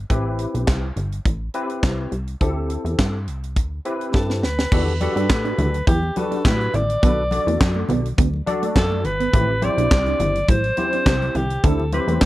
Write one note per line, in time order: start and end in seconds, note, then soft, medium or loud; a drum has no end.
0.10 0.47 A1 medium
0.10 0.85 C4 medium
0.10 0.85 E4 medium
0.10 0.85 G4 medium
0.10 0.86 B4 medium
0.10 kick loud
0.10 closed hi-hat medium
0.39 closed hi-hat medium
0.54 0.66 B1 medium
0.54 closed hi-hat medium
0.67 0.92 C2 loud
0.67 kick loud
0.67 snare loud
0.67 clap medium
0.67 closed hi-hat medium
0.96 1.20 G1 medium
0.96 closed hi-hat medium
1.12 closed hi-hat soft
1.25 1.49 A1 medium
1.25 kick loud
1.25 closed hi-hat medium
1.54 2.10 C4 medium
1.54 2.10 E4 medium
1.54 2.10 G4 medium
1.54 2.11 B4 medium
1.54 closed hi-hat medium
1.70 closed hi-hat soft
1.83 2.07 C2 loud
1.83 kick loud
1.83 snare medium
1.83 clap medium
1.83 closed hi-hat medium
2.12 2.36 C2 medium
2.12 closed hi-hat medium
2.27 closed hi-hat soft
2.41 2.78 D2 loud
2.41 3.16 C4 medium
2.41 3.16 E4 medium
2.41 3.16 G4 medium
2.41 3.16 A4 medium
2.41 kick loud
2.41 closed hi-hat medium
2.70 closed hi-hat medium
2.85 2.96 E2 medium
2.85 closed hi-hat medium
2.98 3.29 G2 medium
2.98 kick loud
2.98 snare loud
2.98 clap medium
2.98 closed hi-hat medium
3.27 3.58 C2 medium
3.27 closed hi-hat medium
3.43 closed hi-hat soft
3.56 3.80 D2 medium
3.56 kick loud
3.56 closed hi-hat medium
3.85 4.41 C4 medium
3.85 4.41 E4 medium
3.85 4.41 G4 medium
3.85 4.41 B4 medium
3.85 closed hi-hat medium
4.01 closed hi-hat soft
4.14 4.44 G2 medium
4.14 4.45 A4 medium
4.14 kick loud
4.14 snare medium
4.30 snare medium
4.43 4.67 D2 medium
4.43 5.01 B4 medium
4.43 snare medium
4.59 snare medium
4.72 5.08 E2 loud
4.72 4.91 D4 medium
4.72 4.81 E4 medium
4.72 4.91 F#4 medium
4.72 4.91 G4 medium
4.72 4.92 A4 medium
4.72 kick loud
4.72 crash loud
4.72 muted conga soft
4.72 low conga medium
4.88 closed hi-hat soft
4.88 muted conga soft
5.00 5.76 D4 medium
5.00 5.76 F#4 medium
5.00 5.76 G4 medium
5.00 5.76 A4 medium
5.00 5.84 B4 medium
5.00 muted clean electric guitar stroke soft
5.00 closed hi-hat medium
5.00 high conga medium
5.16 5.31 G2 medium
5.16 5.24 D4 medium
5.16 closed hi-hat medium
5.30 5.54 A2 medium
5.30 kick loud
5.30 snare loud
5.30 clap loud
5.30 muted conga soft
5.45 5.53 D4 medium
5.45 closed hi-hat soft
5.58 5.82 D2 loud
5.58 5.67 E4 medium
5.58 closed hi-hat medium
5.58 high conga medium
5.58 low conga medium
5.74 closed hi-hat medium
5.87 6.11 E2 loud
5.87 5.96 E4 medium
5.87 6.19 G4 loud
5.87 kick loud
5.87 closed hi-hat loud
5.87 high conga medium
6.03 muted conga soft
6.16 6.72 D4 medium
6.16 6.72 F#4 medium
6.16 6.72 G4 medium
6.16 6.48 A4 medium
6.16 6.72 B4 medium
6.16 muted clean electric guitar stroke soft
6.16 closed hi-hat medium
6.16 high conga medium
6.31 6.39 D4 medium
6.31 closed hi-hat medium
6.45 6.69 A2 loud
6.45 6.77 B4 loud
6.45 kick loud
6.45 snare loud
6.45 clap medium
6.45 muted conga soft
6.45 high conga medium
6.61 closed hi-hat soft
6.74 6.98 A1 loud
6.74 6.83 E4 medium
6.74 7.90 D5 loud
6.74 closed hi-hat medium
6.74 low conga medium
6.90 closed hi-hat medium
7.02 7.39 B1 loud
7.02 7.12 B3 medium
7.02 7.22 D4 medium
7.02 7.22 F#4 medium
7.02 7.22 A4 medium
7.02 7.22 B4 medium
7.02 kick loud
7.02 closed hi-hat medium
7.02 low conga medium
7.31 8.06 D4 medium
7.31 8.07 F#4 medium
7.31 8.07 A4 medium
7.31 8.07 D5 medium
7.31 muted clean electric guitar stroke soft
7.31 closed hi-hat medium
7.31 high conga medium
7.47 7.58 E2 medium
7.47 7.55 A3 medium
7.47 closed hi-hat medium
7.61 7.84 F#2 loud
7.61 kick loud
7.61 snare loud
7.61 clap loud
7.75 7.84 A3 medium
7.75 muted conga soft
7.89 8.13 B1 loud
7.89 7.98 B3 medium
7.89 closed hi-hat medium
7.89 high conga medium
7.89 low conga medium
8.05 closed hi-hat medium
8.18 8.42 D2 loud
8.18 8.27 B3 medium
8.18 kick loud
8.18 closed hi-hat loud
8.18 muted conga soft
8.18 high conga medium
8.34 muted conga soft
8.46 9.03 D4 medium
8.46 9.03 F#4 medium
8.46 9.03 A4 medium
8.46 9.03 D5 medium
8.46 muted clean electric guitar stroke soft
8.46 closed hi-hat medium
8.46 high conga medium
8.62 8.70 A3 medium
8.62 closed hi-hat medium
8.76 9.06 F#2 medium
8.76 9.07 A4 loud
8.76 kick loud
8.76 snare loud
8.76 clap medium
8.76 muted conga soft
8.76 high conga medium
8.91 8.99 A3 medium
8.91 muted conga soft
9.04 9.28 G1 medium
9.04 9.66 B4 loud
9.04 muted clean electric guitar stroke soft
9.04 closed hi-hat medium
9.04 low conga medium
9.20 9.28 B3 medium
9.20 closed hi-hat medium
9.33 9.70 A1 loud
9.33 9.43 A3 medium
9.33 9.52 C4 medium
9.33 9.52 E4 medium
9.33 9.53 G4 medium
9.33 9.53 B4 medium
9.33 kick loud
9.33 closed hi-hat medium
9.33 muted conga soft
9.33 low conga medium
9.61 10.37 C4 medium
9.61 10.37 E4 medium
9.61 10.37 G4 medium
9.61 10.37 C5 medium
9.61 10.51 D5 loud
9.61 muted clean electric guitar stroke soft
9.61 closed hi-hat medium
9.61 high conga medium
9.77 9.89 B1 medium
9.77 9.86 D4 medium
9.77 closed hi-hat medium
9.91 10.15 C2 loud
9.91 kick loud
9.91 snare loud
9.91 clap loud
9.91 muted conga soft
10.06 10.14 D4 medium
10.06 closed hi-hat soft
10.06 muted conga soft
10.19 10.44 G1 loud
10.19 10.29 E4 medium
10.19 closed hi-hat medium
10.19 high conga medium
10.19 low conga medium
10.35 closed hi-hat medium
10.48 10.72 A1 medium
10.48 10.58 E4 medium
10.48 11.38 C5 loud
10.48 kick loud
10.48 closed hi-hat loud
10.48 muted conga soft
10.48 high conga medium
10.64 closed hi-hat soft
10.64 muted conga soft
10.77 10.84 B3 medium
10.77 11.33 E4 medium
10.77 11.33 G4 medium
10.77 11.33 C5 medium
10.77 muted clean electric guitar stroke soft
10.77 closed hi-hat medium
10.77 high conga medium
10.83 11.36 C4 medium
10.93 11.01 D4 medium
10.93 closed hi-hat soft
11.06 11.30 C2 loud
11.06 kick loud
11.06 snare loud
11.06 clap loud
11.06 muted conga soft
11.06 high conga medium
11.22 closed hi-hat soft
11.22 muted conga soft
11.35 11.59 C2 loud
11.35 11.44 E4 medium
11.35 11.66 G4 loud
11.35 closed hi-hat medium
11.35 low conga medium
11.50 closed hi-hat medium
11.64 12.00 D2 loud
11.64 11.83 C4 medium
11.64 11.73 D4 medium
11.64 11.83 E4 medium
11.64 11.83 G4 medium
11.64 11.83 A4 medium
11.64 11.93 A4 loud
11.64 kick loud
11.64 closed hi-hat loud
11.64 low conga medium
11.80 muted conga soft
11.92 12.26 C4 medium
11.92 12.26 E4 medium
11.92 12.26 G4 medium
11.92 12.20 B4 medium
11.92 12.26 C5 medium
11.92 muted clean electric guitar stroke soft
11.92 closed hi-hat medium
11.92 high conga loud
12.07 12.19 E2 medium
12.07 12.16 A3 medium
12.07 closed hi-hat medium
12.21 12.26 G2 loud
12.21 12.26 C5 medium
12.21 kick loud
12.21 snare loud
12.21 clap loud